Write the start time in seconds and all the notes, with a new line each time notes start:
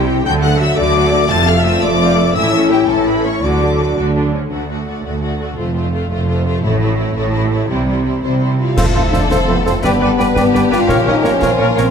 Already playing: C2 C3 E3 C4 G4 G5
0.07 C4 E4 G4
0.25 D2 D3 F#3 A3 D4 F#4 G5 G6
0.42 A3 A4 F#5 F#6
0.59 F#3 F#4 E5 E6
0.77 D2 D3 A3 F#4 A4 D5 D6
0.95 F#3 F#4
1.11 A3 A4
1.28 F1 F2 F3 C4 F4 A5 A6
1.46 A3 A4 F5 F6
1.63 C4 F4 E5 E6
1.81 F1 F2 A3 A4 D5 D6
2.00 C4 F4
2.18 A3 A4
2.35 A1 A2 E3 A3 C#4 E4 E5 E6
2.53 C#4 A4
2.71 A3 E4 G4 G5
2.88 A1 A2 C#4 A4 A5
3.05 A3 E4 B4 B5
3.24 C#4 A4 C#5 C#6
3.42 D2 D3 F#3 A3 D4 F#4 D5 D6
3.61 D4 A4
3.79 A3 F#4
3.97 D2 D3 F#4
4.16 D4
4.34 C#4
4.51 D2 A3 F#4 D5
4.69 A3 F#4 D5
4.86 A3 F#4 D5
5.04 D2 A3 F#4 D5
5.22 A3 F#4 D5
5.40 A3 F#4 D5
5.57 F1 F2 A3 F4 C5
5.75 A3 F4 C5
5.93 A3 F4 C5
6.11 F1 F2 A3 F4 C5
6.28 A3 F4 C5
6.45 A3 F4 C5
6.63 A1 A2 A3 E4 C#5
6.80 A3 E4 C#5
6.96 A3 E4
7.01 C#5
7.14 A1 A2 A3 E4 C#5
7.32 A3 E4 C#5
7.50 A3 E4 C#5
7.69 C2 C3 G3 E4 C5
7.88 G3 E4 C5
8.05 G3 E4 C5
8.22 C2 C3 G3 C4 E4 C5
8.41 G3 E4 C5
8.60 G3 E4 F4 C5 F5
8.76 F1 F2 F3 A3 A4 C5 F5, concert bass drum, snare, crash
8.94 F1 F2 E4 A4 C5 E5 F5
9.12 F1 F2 D4 A4 C5 D5 F5, snare
9.30 F1 F2 F3 A3 C4 A4 C5 F5, concert bass drum, snare
9.47 F1 F2 B3 A4 B4 C5 F5
9.65 F1 F2 C4 A4 C5 F5, snare
9.83 G1 G2 G3 B3 D4 G4 B4 D5 G5, concert bass drum, snare
10.01 G1 G2 A4 B4 D5 G5
10.19 G1 G2 B4 D5 G5, snare
10.35 G1 G2 G3 B3 D4 G4 B4 D5 G5, concert bass drum, snare
10.53 G1 G2 B4 D5 G5, snare
10.71 G1 G2 F4 B4 D5 F5 G5, snare
10.88 A#1 A#2 F3 C#4 A#4 C#5 F5, concert bass drum, snare
11.05 A#1 A#2 D#4 A#4 C#5 D#5
11.10 F5
11.23 A#1 A#2 C#4 A#4 C#5, snare
11.27 F5
11.40 A#1 A#2 F4 A#4 C5 C#5, concert bass drum, snare
11.44 C4 F5
11.58 A#1 A#2 A#3 A#4 C#5 F5
11.76 A#1 A#2 C4 A#4 C5 C#5 F5, snare